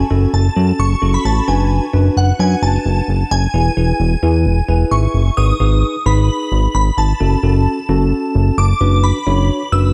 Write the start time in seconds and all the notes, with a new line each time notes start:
0.11 F#1 C#4 F#4 A4
0.34 F#1 A5
0.56 F#2 C#4 F#4 A4
0.79 F#1 C#6
1.02 F#1 C#4 F#4 A4
1.14 B5
1.25 A1 A5
1.48 F#1 D4 F#4 B4 G#5
1.93 F#1 D4 F#4 B4
2.17 F#1 F#5
2.39 F#2 D4 F#4 B4 G#5
2.62 F#1 A5
2.85 F#1
3.08 F#1
3.31 F#1 G#5
3.54 E1 E4 G#4 B4
3.77 E1 E4 G#4 B4
4.00 E1
4.23 E2 E4 G#4 B4
4.46 E1
4.68 E1 E4 G#4 B4 G#5
4.91 G#1 E5 C#6
5.14 F#1
5.37 G#1 D#4 G#4 B4 D#6
5.60 G#1 D#4 G#4 B4
6.06 G#1 D#4 G#4 B4 B5
6.52 G#1
6.75 G#1 B5
6.98 G#1 A5
7.20 F#1 C#4 F#4 A4
7.43 F#1 C#4 F#4 A4
7.89 F#1 C#4 F#4 A4
8.35 F#1
8.58 F#1 D6
8.81 F#1 D4 F#4 B4
9.04 B5
9.27 F#1 D4 F#4 C#5
9.72 F#1 D4 F#4 B4 E6